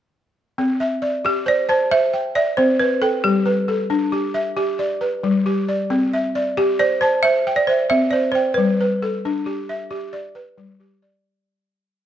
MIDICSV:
0, 0, Header, 1, 3, 480
1, 0, Start_track
1, 0, Key_signature, 0, "major"
1, 0, Tempo, 443787
1, 622, Time_signature, 12, 3, 24, 8
1, 13040, End_track
2, 0, Start_track
2, 0, Title_t, "Balafon"
2, 0, Program_c, 0, 12
2, 1360, Note_on_c, 0, 67, 79
2, 1596, Note_off_c, 0, 67, 0
2, 1603, Note_on_c, 0, 74, 77
2, 1831, Note_on_c, 0, 72, 78
2, 1837, Note_off_c, 0, 74, 0
2, 1936, Note_off_c, 0, 72, 0
2, 2071, Note_on_c, 0, 76, 90
2, 2510, Note_off_c, 0, 76, 0
2, 2546, Note_on_c, 0, 74, 78
2, 2781, Note_on_c, 0, 72, 84
2, 2788, Note_off_c, 0, 74, 0
2, 3023, Note_on_c, 0, 71, 73
2, 3026, Note_off_c, 0, 72, 0
2, 3262, Note_on_c, 0, 69, 82
2, 3267, Note_off_c, 0, 71, 0
2, 3503, Note_on_c, 0, 67, 75
2, 3506, Note_off_c, 0, 69, 0
2, 5378, Note_off_c, 0, 67, 0
2, 7110, Note_on_c, 0, 67, 83
2, 7349, Note_on_c, 0, 74, 87
2, 7354, Note_off_c, 0, 67, 0
2, 7581, Note_on_c, 0, 72, 77
2, 7593, Note_off_c, 0, 74, 0
2, 7816, Note_on_c, 0, 76, 91
2, 7829, Note_off_c, 0, 72, 0
2, 8178, Note_on_c, 0, 74, 89
2, 8191, Note_off_c, 0, 76, 0
2, 8298, Note_on_c, 0, 72, 76
2, 8305, Note_off_c, 0, 74, 0
2, 8541, Note_on_c, 0, 76, 95
2, 8549, Note_off_c, 0, 72, 0
2, 8650, Note_off_c, 0, 76, 0
2, 8767, Note_on_c, 0, 74, 74
2, 8995, Note_on_c, 0, 72, 81
2, 8999, Note_off_c, 0, 74, 0
2, 9240, Note_on_c, 0, 71, 80
2, 9259, Note_off_c, 0, 72, 0
2, 11611, Note_off_c, 0, 71, 0
2, 13040, End_track
3, 0, Start_track
3, 0, Title_t, "Balafon"
3, 0, Program_c, 1, 12
3, 630, Note_on_c, 1, 60, 69
3, 868, Note_on_c, 1, 76, 61
3, 1103, Note_on_c, 1, 74, 60
3, 1104, Note_off_c, 1, 60, 0
3, 1348, Note_on_c, 1, 67, 67
3, 1580, Note_on_c, 1, 72, 62
3, 1582, Note_off_c, 1, 76, 0
3, 1819, Note_off_c, 1, 74, 0
3, 1822, Note_off_c, 1, 67, 0
3, 1825, Note_on_c, 1, 81, 62
3, 2058, Note_off_c, 1, 72, 0
3, 2071, Note_on_c, 1, 72, 79
3, 2309, Note_on_c, 1, 79, 57
3, 2540, Note_off_c, 1, 81, 0
3, 2543, Note_off_c, 1, 72, 0
3, 2547, Note_on_c, 1, 76, 62
3, 2791, Note_on_c, 1, 60, 74
3, 3022, Note_off_c, 1, 79, 0
3, 3035, Note_on_c, 1, 72, 57
3, 3261, Note_off_c, 1, 76, 0
3, 3263, Note_off_c, 1, 60, 0
3, 3268, Note_on_c, 1, 79, 61
3, 3506, Note_on_c, 1, 55, 65
3, 3738, Note_on_c, 1, 71, 64
3, 3742, Note_off_c, 1, 79, 0
3, 3745, Note_off_c, 1, 72, 0
3, 3981, Note_off_c, 1, 55, 0
3, 3982, Note_on_c, 1, 69, 61
3, 4219, Note_on_c, 1, 62, 76
3, 4457, Note_off_c, 1, 71, 0
3, 4458, Note_on_c, 1, 67, 64
3, 4697, Note_on_c, 1, 76, 63
3, 4698, Note_off_c, 1, 62, 0
3, 4700, Note_off_c, 1, 69, 0
3, 4925, Note_off_c, 1, 67, 0
3, 4938, Note_on_c, 1, 67, 75
3, 5181, Note_on_c, 1, 74, 65
3, 5418, Note_off_c, 1, 67, 0
3, 5418, Note_off_c, 1, 76, 0
3, 5418, Note_on_c, 1, 71, 56
3, 5662, Note_on_c, 1, 55, 70
3, 5901, Note_off_c, 1, 74, 0
3, 5904, Note_on_c, 1, 67, 62
3, 6139, Note_off_c, 1, 71, 0
3, 6141, Note_off_c, 1, 55, 0
3, 6149, Note_on_c, 1, 74, 57
3, 6384, Note_on_c, 1, 60, 72
3, 6623, Note_off_c, 1, 67, 0
3, 6625, Note_off_c, 1, 74, 0
3, 6635, Note_on_c, 1, 76, 59
3, 6863, Note_off_c, 1, 60, 0
3, 6872, Note_on_c, 1, 74, 62
3, 7112, Note_on_c, 1, 67, 77
3, 7349, Note_off_c, 1, 76, 0
3, 7352, Note_on_c, 1, 72, 62
3, 7588, Note_off_c, 1, 67, 0
3, 7588, Note_off_c, 1, 74, 0
3, 7593, Note_on_c, 1, 81, 65
3, 7823, Note_off_c, 1, 72, 0
3, 7836, Note_on_c, 1, 72, 72
3, 8079, Note_on_c, 1, 79, 66
3, 8309, Note_off_c, 1, 81, 0
3, 8311, Note_off_c, 1, 72, 0
3, 8320, Note_on_c, 1, 76, 58
3, 8552, Note_on_c, 1, 60, 72
3, 8791, Note_on_c, 1, 72, 62
3, 8793, Note_off_c, 1, 79, 0
3, 9029, Note_off_c, 1, 60, 0
3, 9033, Note_on_c, 1, 79, 55
3, 9034, Note_off_c, 1, 76, 0
3, 9277, Note_on_c, 1, 55, 66
3, 9510, Note_off_c, 1, 72, 0
3, 9510, Note_off_c, 1, 79, 0
3, 9524, Note_on_c, 1, 71, 59
3, 9752, Note_off_c, 1, 55, 0
3, 9761, Note_on_c, 1, 69, 60
3, 10007, Note_on_c, 1, 62, 75
3, 10232, Note_on_c, 1, 67, 59
3, 10236, Note_off_c, 1, 71, 0
3, 10475, Note_off_c, 1, 69, 0
3, 10478, Note_off_c, 1, 62, 0
3, 10484, Note_on_c, 1, 76, 59
3, 10701, Note_off_c, 1, 67, 0
3, 10714, Note_on_c, 1, 67, 73
3, 10955, Note_on_c, 1, 74, 58
3, 11191, Note_off_c, 1, 67, 0
3, 11196, Note_off_c, 1, 76, 0
3, 11196, Note_on_c, 1, 71, 57
3, 11439, Note_on_c, 1, 55, 64
3, 11671, Note_off_c, 1, 74, 0
3, 11682, Note_on_c, 1, 67, 52
3, 11911, Note_off_c, 1, 71, 0
3, 11913, Note_off_c, 1, 55, 0
3, 11923, Note_on_c, 1, 74, 57
3, 12394, Note_off_c, 1, 67, 0
3, 12395, Note_off_c, 1, 74, 0
3, 13040, End_track
0, 0, End_of_file